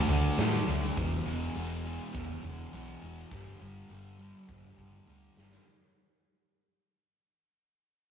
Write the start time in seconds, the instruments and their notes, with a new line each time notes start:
Already playing: distorted electric guitar D3 A3
0.09 fingered electric bass D2, distorted electric guitar A3 D4, open hi-hat
0.38 fingered electric bass A2, distorted electric guitar D3 A3 D4, snare, open hi-hat
0.68 fingered electric bass D2, distorted electric guitar A3 D4, open hi-hat
0.97 fingered electric bass E1, distorted electric guitar E2 B2 E3, kick, open hi-hat
1.26 fingered electric bass E1, distorted electric guitar B2 E3, open hi-hat
1.55 fingered electric bass E1, distorted electric guitar E2 B2 E3, open hi-hat
1.84 distorted electric guitar B2 E3, open hi-hat
2.14 fingered electric bass E1, distorted electric guitar E2 B2 E3, kick, open hi-hat
2.43 fingered electric bass E1, distorted electric guitar B2 E3, open hi-hat
2.72 fingered electric bass B1, distorted electric guitar E2 B2 E3, open hi-hat
3.02 fingered electric bass E1, distorted electric guitar B2 E3, open hi-hat
3.31 fingered electric bass G1, distorted electric guitar G2 D3 G3, kick, open hi-hat
3.60 fingered electric bass G1, distorted electric guitar D3 G3, open hi-hat
3.89 fingered electric bass G1, distorted electric guitar G2 D3 G3, open hi-hat
4.18 distorted electric guitar D3 G3, open hi-hat
4.47 fingered electric bass G1, distorted electric guitar G2 D3 G3, kick, open hi-hat
4.77 fingered electric bass G1, distorted electric guitar D3 G3, kick, open hi-hat
5.06 fingered electric bass D2, distorted electric guitar G2 D3 G3, open hi-hat
5.35 fingered electric bass G1, distorted electric guitar D3 G3, snare
5.52 snare